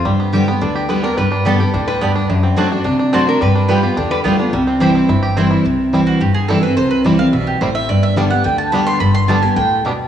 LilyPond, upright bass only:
\new Staff \with { instrumentName = "Upright bass" } { \clef bass \time 4/4 \key c \major \tempo 4 = 215 g,2 d,2 | g,2 d,2 | fis,2 d2 | g,2 e,4 d,4 |
c,2 g,,2 | c,2 g,,2 | c,2 b,,4 a,,4 | g,,2 d,2 |
g,,2 d,2 | }